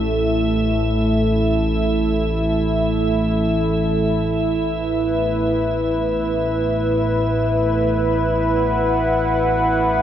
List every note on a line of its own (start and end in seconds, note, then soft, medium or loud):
0.00 10.02 A1 medium
0.00 10.02 A2 medium
0.00 4.25 A3 medium
0.00 10.02 E4 medium
0.00 4.25 A4 medium
0.00 10.02 E5 medium
4.71 10.02 B4 medium
8.48 10.02 F#5 medium